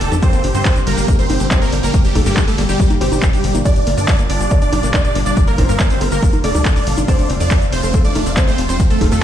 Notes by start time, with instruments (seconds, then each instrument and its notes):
Already playing: analog synth pad D3 F3 A#3 G4, supersaw synth A4 A5, synth pluck A5
0.01 analog synth bass F1, synth pluck D4, open hi-hat
0.12 analog synth bass F2, synth pluck F3, closed hi-hat, high conga, shaker
0.22 analog synth pad A#2 G3, synth pluck G3 C5, supersaw synth C4 C5, felt piano C4 C5, kick, closed hi-hat, shaker
0.33 synth pluck A#3, closed hi-hat, shaker
0.44 analog synth bass G1, synth pluck D4, open hi-hat
0.54 analog synth bass G2, synth pluck G3 C5, supersaw synth C4 C5, closed hi-hat, shaker
0.65 synth pluck A#3, kick, clap, closed hi-hat, shaker
0.76 synth pluck D4, closed hi-hat, shaker
0.87 analog synth bass G1, synth pluck G3 A#4, supersaw synth A#3 A#4, open hi-hat
0.98 analog synth bass G1, synth pluck A#3, closed hi-hat, shaker
1.08 felt piano A#3 A#4, synth pluck D4, kick, closed hi-hat, shaker
1.19 synth pluck G3 C5, supersaw synth C4 C5, closed hi-hat, shaker
1.30 analog synth bass G1, synth pluck A#3, open hi-hat, high conga
1.40 analog synth bass G1, synth pluck D4, closed hi-hat, shaker
1.51 synth pluck G3, felt piano C4 C5, kick, clap, closed hi-hat, shaker
1.62 supersaw synth A#3 A#4, synth pluck A#3 A#4, closed hi-hat, shaker
1.73 analog synth bass G1, synth pluck D4, open hi-hat
1.83 analog synth bass G1, synth pluck G3 A#4, supersaw synth A#3 A#4, closed hi-hat, shaker
1.94 synth pluck A#3, kick, closed hi-hat, shaker
2.04 supersaw synth G3 G4, synth pluck D4 G4, closed hi-hat, shaker
2.15 analog synth bass G1, synth pluck G3, felt piano A3 A4, kick, open hi-hat, high conga
2.26 analog synth bass G2, supersaw synth G3 G4, synth pluck A#3 G4, closed hi-hat, shaker
2.37 synth pluck D4, kick, clap, closed hi-hat, shaker
2.47 synth pluck G3 A4, supersaw synth A3 A4, open hi-hat, shaker
2.58 analog synth bass G1, felt piano G3 G4, synth pluck A#3, open hi-hat
2.69 analog synth bass G1, supersaw synth G3 G4, synth pluck D4 G4, closed hi-hat, shaker
2.80 synth pluck G3, kick, closed hi-hat, shaker
2.90 synth pluck A#3, closed hi-hat, high conga, shaker
3.01 analog synth bass G1, supersaw synth G3 G4, felt piano C4 C5, synth pluck D4 G4, open hi-hat
3.12 analog synth bass G1, synth pluck G3, closed hi-hat, high conga, shaker
3.22 synth pluck A#3, kick, clap, closed hi-hat, shaker
3.33 supersaw synth G3 G4, synth pluck D4 G4, closed hi-hat, shaker
3.44 analog synth bass G1, synth pluck G3, open hi-hat
3.55 analog synth bass G1, synth pluck A#3, closed hi-hat, high conga, shaker
3.65 felt piano D4 D5, synth pluck D4 D5, supersaw synth D4 D5, analog synth pad F4, kick, closed hi-hat, shaker
3.76 synth pluck G3, closed hi-hat, shaker
3.87 analog synth bass G1, synth pluck A#3, open hi-hat
3.98 analog synth bass G2, supersaw synth D4 D5, synth pluck D4 D5, closed hi-hat, shaker
4.08 synth pluck G3, kick, clap, closed hi-hat, shaker
4.19 synth pluck A#3, closed hi-hat, shaker
4.30 analog synth bass G1, synth pluck D4 D5, supersaw synth D4 D5, open hi-hat
4.40 analog synth bass G1, synth pluck G3, closed hi-hat, shaker
4.51 synth pluck A#3, felt piano D4 D5, kick, closed hi-hat, shaker
4.62 synth pluck D4 D5, supersaw synth D4 D5, closed hi-hat, shaker
4.73 analog synth bass G1, synth pluck G3, open hi-hat, high conga
4.83 analog synth bass G1, synth pluck A#3, closed hi-hat, shaker
4.94 felt piano D4 D5, synth pluck D4, kick, clap, closed hi-hat, shaker
5.05 synth pluck G3 D5, supersaw synth D4 D5, closed hi-hat, shaker
5.15 analog synth bass G1, synth pluck A#3, open hi-hat
5.26 analog synth bass G1, synth pluck D4 D5, supersaw synth D4 D5, closed hi-hat, shaker
5.37 synth pluck G3, kick, closed hi-hat, shaker
5.47 synth pluck A#3 A#4, supersaw synth A#3 A#4, closed hi-hat, shaker
5.58 analog synth bass G1, felt piano C4 C5, synth pluck D4, kick, open hi-hat, high conga
5.69 analog synth bass G2, synth pluck G3 A#4, supersaw synth A#3 A#4, closed hi-hat, shaker
5.79 synth pluck A#3, kick, clap, closed hi-hat, shaker
5.90 supersaw synth C4 C5, synth pluck D4 C5, open hi-hat, shaker
6.01 analog synth bass G1, synth pluck G3, felt piano A#3 A#4, open hi-hat
6.12 analog synth bass G1, synth pluck A#3 A#4, supersaw synth A#3 A#4, closed hi-hat, shaker
6.23 synth pluck D4, kick, closed hi-hat, shaker
6.33 synth pluck G3, closed hi-hat, high conga, shaker
6.44 analog synth bass F1, felt piano A3 A4, synth pluck A#3 D5, supersaw synth D4 D5, open hi-hat
6.55 analog synth bass D2, synth pluck G3, closed hi-hat, high conga, shaker
6.65 synth pluck D5, kick, clap, closed hi-hat, shaker
6.76 supersaw synth D4 D5, synth pluck D5, closed hi-hat, shaker
6.87 analog synth bass G1, synth pluck G3, open hi-hat
6.97 analog synth bass G1, synth pluck D4, closed hi-hat, high conga, shaker
7.08 analog synth pad C3 F3 A3, synth pluck F3 D5, felt piano C4 C5, supersaw synth D4 D5, kick, closed hi-hat, shaker
7.19 synth pluck A3, closed hi-hat, shaker
7.30 analog synth bass F1, synth pluck C4, open hi-hat
7.40 analog synth bass F2, synth pluck F3 D5, supersaw synth D4 D5, closed hi-hat, shaker
7.50 synth pluck A3, kick, clap, closed hi-hat, shaker
7.62 synth pluck C4, closed hi-hat, shaker
7.72 analog synth bass F1, synth pluck F3 C5, supersaw synth C4 C5, open hi-hat
7.83 analog synth bass F1, synth pluck A3, closed hi-hat, shaker
7.94 felt piano A3 A4, synth pluck C4, kick, closed hi-hat, shaker
8.04 synth pluck F3 D5, supersaw synth D4 D5, closed hi-hat, shaker
8.15 analog synth bass F1, synth pluck A3, open hi-hat, high conga
8.26 analog synth bass F1, synth pluck C4, closed hi-hat, shaker
8.37 synth pluck F3, felt piano C4 C5, kick, clap, closed hi-hat, shaker
8.48 synth pluck A3 C5, supersaw synth C4 C5, closed hi-hat, shaker
8.58 analog synth bass F1, synth pluck C4, open hi-hat
8.69 analog synth bass F1, synth pluck F3 C5, supersaw synth C4 C5, closed hi-hat, shaker
8.80 synth pluck A3, kick, closed hi-hat, shaker
8.90 supersaw synth A3 A4, synth pluck C4 A4, closed hi-hat, shaker
9.01 analog synth bass F1, synth pluck F3, felt piano A3 A4, kick, open hi-hat, high conga
9.12 analog synth bass F2, synth pluck A3 A4, supersaw synth A3 A4, closed hi-hat, shaker